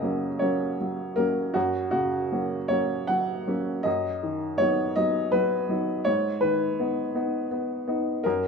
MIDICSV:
0, 0, Header, 1, 2, 480
1, 0, Start_track
1, 0, Key_signature, 6, "major"
1, 0, Tempo, 764331
1, 968, Time_signature, 6, 3, 24, 8
1, 2419, Tempo, 733496
1, 5446, End_track
2, 0, Start_track
2, 0, Title_t, "Upright piano"
2, 0, Program_c, 0, 0
2, 0, Control_c, 0, 64, 127
2, 0, Note_on_c, 0, 42, 49
2, 0, Note_on_c, 0, 49, 37
2, 0, Note_on_c, 0, 70, 72
2, 0, Note_on_c, 0, 75, 76
2, 16, Note_on_c, 0, 54, 36
2, 18, Note_on_c, 0, 58, 37
2, 26, Note_on_c, 0, 61, 40
2, 165, Note_off_c, 0, 49, 0
2, 232, Note_off_c, 0, 54, 0
2, 233, Note_off_c, 0, 58, 0
2, 238, Note_off_c, 0, 61, 0
2, 246, Note_on_c, 0, 73, 65
2, 255, Note_off_c, 0, 75, 0
2, 261, Note_on_c, 0, 54, 36
2, 264, Note_on_c, 0, 58, 37
2, 265, Note_on_c, 0, 61, 39
2, 473, Note_off_c, 0, 54, 0
2, 475, Note_off_c, 0, 58, 0
2, 475, Note_off_c, 0, 61, 0
2, 507, Note_on_c, 0, 54, 38
2, 725, Note_off_c, 0, 73, 0
2, 727, Note_off_c, 0, 70, 0
2, 727, Note_on_c, 0, 70, 74
2, 729, Note_off_c, 0, 54, 0
2, 738, Note_on_c, 0, 54, 37
2, 739, Note_on_c, 0, 58, 36
2, 746, Note_on_c, 0, 61, 40
2, 947, Note_off_c, 0, 42, 0
2, 949, Note_off_c, 0, 54, 0
2, 949, Note_off_c, 0, 58, 0
2, 953, Note_off_c, 0, 61, 0
2, 965, Note_on_c, 0, 66, 73
2, 967, Note_off_c, 0, 70, 0
2, 976, Note_on_c, 0, 42, 51
2, 982, Control_c, 0, 64, 0
2, 1074, Control_c, 0, 64, 127
2, 1189, Note_off_c, 0, 66, 0
2, 1199, Note_on_c, 0, 66, 72
2, 1210, Note_on_c, 0, 49, 37
2, 1457, Note_on_c, 0, 54, 38
2, 1460, Note_on_c, 0, 58, 36
2, 1461, Note_on_c, 0, 61, 41
2, 1602, Note_off_c, 0, 49, 0
2, 1678, Note_off_c, 0, 54, 0
2, 1680, Note_off_c, 0, 58, 0
2, 1680, Note_off_c, 0, 61, 0
2, 1685, Note_on_c, 0, 73, 77
2, 1695, Note_on_c, 0, 54, 36
2, 1696, Note_off_c, 0, 66, 0
2, 1702, Note_on_c, 0, 58, 38
2, 1703, Note_on_c, 0, 61, 40
2, 1918, Note_off_c, 0, 54, 0
2, 1921, Note_off_c, 0, 58, 0
2, 1922, Note_off_c, 0, 61, 0
2, 1930, Note_on_c, 0, 78, 79
2, 1937, Note_off_c, 0, 73, 0
2, 1938, Note_on_c, 0, 54, 36
2, 2171, Note_off_c, 0, 54, 0
2, 2181, Note_on_c, 0, 54, 36
2, 2183, Note_on_c, 0, 58, 37
2, 2186, Note_on_c, 0, 61, 42
2, 2394, Note_off_c, 0, 54, 0
2, 2395, Note_off_c, 0, 58, 0
2, 2397, Note_off_c, 0, 42, 0
2, 2397, Note_off_c, 0, 61, 0
2, 2406, Note_on_c, 0, 75, 78
2, 2412, Note_off_c, 0, 78, 0
2, 2420, Note_on_c, 0, 42, 50
2, 2430, Control_c, 0, 64, 0
2, 2546, Control_c, 0, 64, 127
2, 2666, Note_on_c, 0, 51, 37
2, 2894, Note_on_c, 0, 73, 84
2, 2897, Note_off_c, 0, 75, 0
2, 2907, Note_on_c, 0, 54, 38
2, 2912, Note_on_c, 0, 59, 39
2, 2913, Note_on_c, 0, 63, 44
2, 3050, Note_off_c, 0, 51, 0
2, 3122, Note_off_c, 0, 54, 0
2, 3125, Note_off_c, 0, 59, 0
2, 3125, Note_off_c, 0, 63, 0
2, 3139, Note_off_c, 0, 73, 0
2, 3141, Note_on_c, 0, 75, 85
2, 3149, Note_on_c, 0, 54, 39
2, 3151, Note_on_c, 0, 59, 40
2, 3156, Note_on_c, 0, 63, 44
2, 3362, Note_off_c, 0, 54, 0
2, 3364, Note_off_c, 0, 59, 0
2, 3366, Note_off_c, 0, 63, 0
2, 3377, Note_on_c, 0, 71, 81
2, 3382, Note_off_c, 0, 75, 0
2, 3387, Note_on_c, 0, 54, 43
2, 3613, Note_off_c, 0, 54, 0
2, 3623, Note_on_c, 0, 54, 38
2, 3627, Note_on_c, 0, 63, 46
2, 3628, Note_on_c, 0, 59, 41
2, 3835, Note_off_c, 0, 42, 0
2, 3837, Note_off_c, 0, 54, 0
2, 3840, Note_off_c, 0, 59, 0
2, 3840, Note_off_c, 0, 63, 0
2, 3854, Note_on_c, 0, 73, 84
2, 3858, Note_off_c, 0, 71, 0
2, 3866, Note_on_c, 0, 44, 55
2, 3872, Control_c, 0, 64, 0
2, 3994, Control_c, 0, 64, 127
2, 4091, Note_on_c, 0, 71, 78
2, 4095, Note_off_c, 0, 73, 0
2, 4102, Note_on_c, 0, 51, 40
2, 4344, Note_on_c, 0, 59, 42
2, 4350, Note_on_c, 0, 63, 44
2, 4480, Note_off_c, 0, 51, 0
2, 4554, Note_off_c, 0, 59, 0
2, 4557, Note_off_c, 0, 63, 0
2, 4569, Note_off_c, 0, 71, 0
2, 4577, Note_on_c, 0, 63, 44
2, 4579, Note_on_c, 0, 59, 44
2, 4788, Note_off_c, 0, 63, 0
2, 4790, Note_off_c, 0, 59, 0
2, 4814, Note_on_c, 0, 59, 41
2, 5042, Note_off_c, 0, 59, 0
2, 5052, Note_on_c, 0, 59, 42
2, 5058, Note_on_c, 0, 63, 43
2, 5269, Note_off_c, 0, 44, 0
2, 5269, Note_off_c, 0, 59, 0
2, 5273, Note_off_c, 0, 63, 0
2, 5288, Note_on_c, 0, 70, 80
2, 5304, Note_on_c, 0, 42, 54
2, 5305, Control_c, 0, 64, 0
2, 5399, Control_c, 0, 64, 127
2, 5446, Note_off_c, 0, 42, 0
2, 5446, Note_off_c, 0, 70, 0
2, 5446, End_track
0, 0, End_of_file